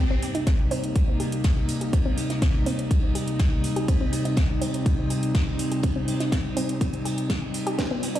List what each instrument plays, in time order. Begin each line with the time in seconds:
0.00 analog synth pad C3 G3 A#3 D#4
0.10 synth arpeggio sound C4
0.22 open hi-hat, ride
0.35 synth arpeggio sound D#4, closed hi-hat, ride
0.47 synth arpeggio sound C4, kick, snare, closed hi-hat, ride
0.71 synth arpeggio sound C4, open hi-hat, ride
0.84 closed hi-hat
0.96 kick, closed hi-hat, ride
1.20 synth arpeggio sound G4, open hi-hat, ride
1.32 closed hi-hat
1.44 synth arpeggio sound G3, kick, snare, closed hi-hat, ride
1.57 ride
1.69 open hi-hat, ride
1.81 synth arpeggio sound G4, closed hi-hat
1.93 synth arpeggio sound C4, kick, closed hi-hat, ride
2.05 synth arpeggio sound C4
2.17 open hi-hat, ride
2.30 synth arpeggio sound D#4, snare, closed hi-hat
2.42 synth arpeggio sound C4, kick, snare, closed hi-hat, ride
2.55 ride
2.66 synth arpeggio sound C4, open hi-hat, ride
2.79 closed hi-hat
2.91 kick, closed hi-hat, ride
3.15 synth arpeggio sound G4, open hi-hat, ride
3.28 closed hi-hat
3.39 synth arpeggio sound G3, kick, snare, closed hi-hat, ride
3.64 open hi-hat, ride
3.76 synth arpeggio sound G4, closed hi-hat
3.88 analog synth pad C4, synth arpeggio sound C4, kick, closed hi-hat, ride
4.01 synth arpeggio sound C4
4.13 open hi-hat, ride
4.25 synth arpeggio sound D#4, closed hi-hat, ride
4.36 synth arpeggio sound C4, kick, snare, closed hi-hat, ride
4.61 synth arpeggio sound C4, open hi-hat, ride
4.74 closed hi-hat
4.86 kick, closed hi-hat, ride
5.10 synth arpeggio sound G4, open hi-hat, ride
5.23 closed hi-hat
5.35 synth arpeggio sound G3, kick, snare, closed hi-hat, ride
5.48 ride
5.59 open hi-hat, ride
5.71 synth arpeggio sound G4, closed hi-hat
5.83 synth arpeggio sound C4, kick, closed hi-hat, ride
5.96 synth arpeggio sound C4
6.08 open hi-hat, ride
6.20 synth arpeggio sound D#4, snare, closed hi-hat
6.32 synth arpeggio sound C4, kick, snare, closed hi-hat, ride
6.45 ride
6.57 synth arpeggio sound C4, open hi-hat, ride
6.69 closed hi-hat
6.81 kick, closed hi-hat, ride
6.94 closed hi-hat
7.05 synth arpeggio sound G4, open hi-hat, ride
7.18 closed hi-hat
7.29 synth arpeggio sound G3, kick, snare, closed hi-hat, ride
7.54 open hi-hat, ride
7.67 synth arpeggio sound G4, closed hi-hat
7.78 analog synth pad G2 B3 F4, synth arpeggio sound B3, kick, snare, closed hi-hat, ride, riser
7.91 synth arpeggio sound B3
8.03 open hi-hat, ride
8.15 synth arpeggio sound D4, closed hi-hat, ride